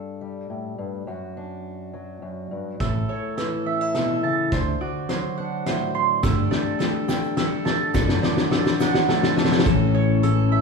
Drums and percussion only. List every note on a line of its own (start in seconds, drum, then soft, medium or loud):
2.80 kick medium
2.80 snare soft
2.80 closed hi-hat soft
3.38 snare soft
3.38 closed hi-hat medium
3.95 snare medium
3.95 closed hi-hat soft
4.52 kick medium
4.52 snare medium
4.52 closed hi-hat medium
5.09 snare medium
5.09 closed hi-hat medium
5.66 snare medium
5.66 closed hi-hat medium
6.23 kick loud
6.23 snare medium
6.23 closed hi-hat medium
6.23 shaker medium
6.52 snare medium
6.80 snare medium
6.80 closed hi-hat medium
7.09 snare medium
7.09 shaker medium
7.24 shaker soft
7.37 snare medium
7.37 closed hi-hat medium
7.66 snare medium
7.94 kick loud
7.94 snare medium
7.94 shaker medium
8.09 snare loud
8.23 snare loud
8.37 snare loud
8.51 snare loud
8.66 snare medium
8.66 shaker soft
8.80 snare loud
8.80 shaker medium
8.94 snare loud
9.09 snare loud
9.09 shaker soft
9.23 snare loud
9.37 snare loud
9.44 snare loud
9.52 snare loud
9.52 shaker soft
9.59 snare loud
9.66 kick loud
9.66 closed hi-hat medium
10.23 closed hi-hat medium